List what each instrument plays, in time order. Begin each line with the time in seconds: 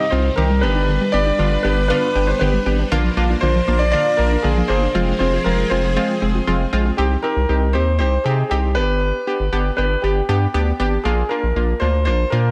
Already playing: string machine C3 G3 D#4, grand piano D#5
0.10 analog synth bass C2, synth arpeggio sound C4, analog polysynth C4 D#4 F4, grand piano C5
0.25 synth arpeggio sound D#4
0.36 analog synth bass C2, synth arpeggio sound D#3, analog polysynth C4 D#4 G4, grand piano A#4
0.50 synth arpeggio sound G3
0.61 analog synth bass G1, synth arpeggio sound B3, analog polysynth B3 D4 G4, string machine D4 B4, grand piano B4
0.75 synth arpeggio sound D4
0.88 synth arpeggio sound D3
1.01 synth arpeggio sound G3
1.12 analog synth bass G1, analog polysynth B3 D4 G4, synth arpeggio sound B3, grand piano D5
1.26 synth arpeggio sound D4
1.39 analog synth bass G1, synth arpeggio sound D3, analog polysynth B3 D4 F4
1.52 synth arpeggio sound G3
1.63 analog synth bass G1, synth arpeggio sound B3, analog polysynth B3 D4 G4, grand piano B4
1.77 synth arpeggio sound D4
1.88 synth arpeggio sound D3, analog polysynth B3 D4 F4, grand piano B4
2.15 analog synth bass G1, synth arpeggio sound B3, analog polysynth B3 D4 G4
2.27 synth arpeggio sound D4, grand piano C5
2.39 analog synth bass G1, synth arpeggio sound D3, analog polysynth B3 D4 G4, grand piano B4
2.53 synth arpeggio sound G3
2.66 analog synth bass G#1, synth arpeggio sound B3, analog polysynth B3 D4 G4
2.79 synth arpeggio sound D4
2.92 analog synth bass A#1, synth arpeggio sound D3, analog polysynth A#3 D4 F4, string machine A#3 D4 F4
3.04 synth arpeggio sound F3
3.17 analog synth bass A#1, synth arpeggio sound A#3, analog polysynth A#3 D4 F4
3.30 synth arpeggio sound D4
3.41 analog synth bass A#1, synth arpeggio sound D3, analog polysynth A#3 D4 F4, grand piano C5
3.55 synth arpeggio sound F3
3.68 analog synth bass A#1, analog polysynth A#3 D4 F4, synth arpeggio sound A#3
3.79 synth arpeggio sound D4, grand piano D5
3.92 synth arpeggio sound D3, analog polysynth A#3 D4 F4, grand piano D5
4.17 analog synth bass A#1, analog polysynth A#3 D4 F4, synth arpeggio sound A#3, grand piano A#4
4.32 synth arpeggio sound D4
4.42 analog synth bass A#1, synth arpeggio sound D3, analog polysynth A#3 D4 F4, grand piano G#4
4.57 synth arpeggio sound F3
4.68 analog synth bass G1, analog polysynth A#3 D4 G#4, synth arpeggio sound A#3, grand piano C5
4.82 synth arpeggio sound D4
4.95 analog synth bass F1, string machine F3 C4 G#4, synth arpeggio sound F3, analog polysynth G#3 C4 F4
5.08 synth arpeggio sound G#3
5.19 analog synth bass F1, analog polysynth G#3 C4 F4, synth arpeggio sound C4, grand piano C5
5.33 synth arpeggio sound F4
5.44 analog synth bass F1, synth arpeggio sound F3, analog polysynth G#3 C4 F4, grand piano A#4
5.58 synth arpeggio sound G#3
5.70 analog synth bass F1, analog polysynth G#3 C4 F4, synth arpeggio sound C4, grand piano C5
5.84 synth arpeggio sound F4
5.96 synth arpeggio sound F3, analog polysynth G#3 C4 F4
6.22 analog synth bass F1, analog polysynth G#3 C4 G#4, synth arpeggio sound C4
6.35 synth arpeggio sound F4
6.47 analog synth bass F1, synth arpeggio sound F3, analog polysynth G#3 C4 F4
6.60 synth arpeggio sound G#3
6.73 analog synth bass A#1, analog polysynth G#3 C4 F4, synth arpeggio sound C4
6.85 synth arpeggio sound F4
6.97 analog synth bass C2, analog polysynth C4 D#4 G4, grand piano G4
7.22 analog polysynth C4 D#4 G4, grand piano A#4
7.36 analog synth bass C2
7.49 analog synth bass C2, analog polysynth C4 D#4 G4
7.73 analog synth bass D#2, analog polysynth C4 D#4 G4, grand piano C5
7.99 analog synth bass C2, analog polysynth C4 D#4 G4, grand piano C5
8.24 analog synth bass C3, analog polysynth C4 D#4 G4, grand piano G#4
8.50 analog synth bass C2, analog polysynth C4 D#4 G4, grand piano G4
8.75 analog synth bass G1, analog polysynth B3 D4 G4, grand piano B4
9.27 analog polysynth B3 D4 G4
9.40 analog synth bass G1
9.52 analog synth bass G1, analog polysynth B3 D4 G4
9.77 analog synth bass G1, analog polysynth B3 D4 G4, grand piano B4
10.02 analog synth bass G1, analog polysynth B3 D4 G4, grand piano G4
10.29 analog synth bass G2, analog polysynth B3 D4 G4
10.54 analog synth bass D2, analog polysynth B3 D4 G4
10.80 analog synth bass G#1, analog polysynth B3 D4 G4
11.04 analog synth bass A#1, analog polysynth A#3 D4 F4, grand piano G#4
11.29 analog polysynth A#3 D4 F4, grand piano A#4
11.43 analog synth bass A#1
11.56 analog synth bass A#1, analog polysynth A#3 D4 F4
11.80 analog synth bass D2, analog polysynth A#3 D4 F4, grand piano C5
12.05 analog synth bass A#1, analog polysynth A#3 D4 F4, grand piano C5
12.30 analog synth bass A#2, analog polysynth A#3 D4 F4, grand piano A#4